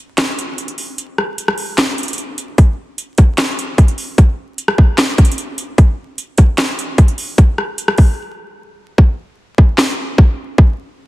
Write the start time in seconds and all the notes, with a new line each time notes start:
0.18 snare, clap, closed hi-hat
0.39 closed hi-hat
0.58 closed hi-hat
0.68 closed hi-hat
0.78 open hi-hat
0.98 closed hi-hat
1.18 cross-stick
1.38 closed hi-hat
1.48 cross-stick
1.58 open hi-hat
1.78 snare, clap, closed hi-hat
1.98 closed hi-hat
2.03 closed hi-hat
2.08 closed hi-hat
2.13 closed hi-hat
2.18 closed hi-hat
2.38 closed hi-hat
2.58 kick, closed hi-hat
2.98 closed hi-hat
3.18 kick, closed hi-hat
3.38 snare, clap, closed hi-hat
3.59 closed hi-hat
3.78 kick, closed hi-hat
3.88 closed hi-hat
3.98 open hi-hat
4.18 kick, closed hi-hat
4.58 closed hi-hat
4.68 cross-stick
4.78 kick
4.98 snare, clap, closed hi-hat
5.18 kick, closed hi-hat
5.25 closed hi-hat
5.32 closed hi-hat
5.38 closed hi-hat
5.58 closed hi-hat
5.78 kick, closed hi-hat
6.18 closed hi-hat
6.38 kick, closed hi-hat
6.58 snare, clap, closed hi-hat
6.79 closed hi-hat
6.98 kick, closed hi-hat
7.08 closed hi-hat
7.18 open hi-hat
7.38 kick, closed hi-hat
7.58 cross-stick
7.78 closed hi-hat
7.88 cross-stick
7.98 kick, open hi-hat
8.98 kick
9.58 kick
9.78 snare, clap
10.18 kick
10.58 kick